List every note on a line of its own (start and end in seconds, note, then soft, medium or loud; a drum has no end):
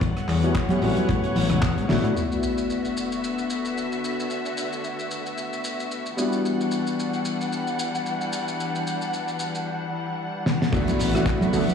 0.01 0.12 A1 loud
0.01 2.14 G3 medium
0.01 2.14 A3 medium
0.01 2.14 B4 medium
0.01 2.14 C#5 medium
0.01 2.14 F#5 medium
0.01 kick loud
0.01 closed hi-hat medium
0.17 cross-stick medium
0.17 closed hi-hat soft
0.28 0.63 E2 medium
0.28 clap soft
0.28 open hi-hat loud
0.43 0.50 G3 medium
0.43 0.50 B3 medium
0.43 0.50 C#4 medium
0.43 0.50 E4 medium
0.43 0.50 F#4 medium
0.43 closed hi-hat soft
0.55 kick loud
0.55 cross-stick medium
0.55 clap loud
0.55 closed hi-hat medium
0.69 0.79 G3 medium
0.69 0.79 B3 medium
0.69 0.79 C#4 medium
0.69 0.79 E4 medium
0.69 0.79 G4 medium
0.69 closed hi-hat medium
0.69 high conga medium
0.81 0.93 A1 medium
0.81 1.86 G3 medium
0.81 1.86 B3 medium
0.81 1.86 C#4 medium
0.81 1.86 E4 medium
0.81 1.87 F#4 loud
0.81 open hi-hat medium
0.97 closed hi-hat medium
0.97 high conga medium
1.09 1.20 A2 loud
1.09 kick medium
1.09 closed hi-hat loud
1.24 1.33 A1 soft
1.24 closed hi-hat medium
1.36 1.79 A1 loud
1.36 open hi-hat loud
1.36 high conga medium
1.50 cross-stick medium
1.50 closed hi-hat medium
1.50 low conga medium
1.62 kick loud
1.62 clap loud
1.62 closed hi-hat loud
1.77 1.86 A2 medium
1.77 closed hi-hat medium
1.88 2.00 A1 medium
1.88 2.13 A3 loud
1.88 2.14 B3 medium
1.88 2.14 D4 medium
1.88 2.15 E4 medium
1.88 2.15 F#4 loud
1.88 snare medium
1.88 open hi-hat medium
2.04 2.12 A2 loud
2.04 closed hi-hat medium
2.15 6.14 D3 medium
2.15 6.14 A3 medium
2.15 6.14 B3 medium
2.15 6.15 D4 medium
2.15 6.15 E4 medium
2.15 6.14 F#4 medium
2.15 6.15 F#4 medium
2.15 6.14 E5 medium
2.15 sub drop medium
2.15 shaker soft
2.32 shaker soft
2.43 shaker medium
2.58 shaker soft
2.70 shaker soft
2.85 shaker soft
2.97 shaker medium
3.12 shaker soft
3.24 shaker medium
3.38 shaker soft
3.50 shaker medium
3.65 shaker soft
3.78 shaker soft
3.92 shaker soft
4.04 shaker medium
4.20 shaker soft
4.30 shaker soft
4.45 shaker soft
4.57 shaker medium
4.73 shaker soft
4.84 shaker soft
4.99 shaker soft
5.11 shaker medium
5.26 shaker soft
5.38 shaker medium
5.53 shaker soft
5.64 shaker medium
5.80 shaker soft
5.91 shaker soft
6.06 shaker soft
6.17 10.69 E3 medium
6.17 9.65 G3 medium
6.17 10.69 G3 medium
6.17 9.66 B3 medium
6.17 9.66 D4 medium
6.17 10.69 D4 medium
6.17 9.66 E4 medium
6.17 9.66 F#4 medium
6.17 10.69 F#5 medium
6.17 shaker medium
6.32 shaker soft
6.45 shaker soft
6.61 shaker soft
6.71 shaker medium
6.87 shaker soft
6.99 shaker medium
7.13 shaker soft
7.25 shaker medium
7.41 shaker soft
7.53 shaker medium
7.67 shaker soft
7.79 shaker medium
7.95 shaker soft
8.06 shaker soft
8.21 shaker soft
8.33 shaker medium
8.48 shaker soft
8.60 shaker soft
8.75 shaker soft
8.87 shaker medium
9.01 shaker soft
9.14 shaker medium
9.28 shaker soft
9.39 shaker medium
9.55 shaker soft
10.46 snare medium
10.62 snare medium
10.72 10.84 D2 loud
10.72 11.08 A3 loud
10.72 11.08 B3 medium
10.72 11.09 D4 medium
10.72 11.74 D4 medium
10.72 11.09 E4 loud
10.72 11.09 F#4 loud
10.72 11.74 B4 medium
10.72 11.74 E5 medium
10.72 11.74 F#5 medium
10.72 kick loud
10.72 closed hi-hat medium
10.72 crash loud
10.72 impact medium
10.72 shaker medium
10.87 closed hi-hat medium
10.87 muted conga medium
10.87 shaker soft
10.99 11.35 A1 medium
10.99 open hi-hat loud
10.99 shaker medium
11.14 11.37 A3 medium
11.14 11.38 B3 medium
11.14 11.38 D4 medium
11.14 11.38 E4 medium
11.14 11.38 F#4 medium
11.14 cross-stick medium
11.14 closed hi-hat medium
11.14 shaker soft
11.26 kick loud
11.26 clap loud
11.26 closed hi-hat loud
11.26 shaker medium
11.41 11.50 A3 medium
11.41 11.50 B3 medium
11.41 11.50 D4 medium
11.41 11.51 E4 medium
11.41 11.51 F#4 loud
11.41 closed hi-hat medium
11.41 high conga loud
11.41 shaker soft
11.53 11.64 D2 medium
11.53 11.61 A3 medium
11.53 11.61 B3 medium
11.53 11.61 D4 medium
11.53 11.62 E4 medium
11.53 11.62 F#4 loud
11.53 open hi-hat medium
11.53 shaker medium
11.68 closed hi-hat medium
11.68 muted conga medium
11.68 high conga medium
11.68 shaker soft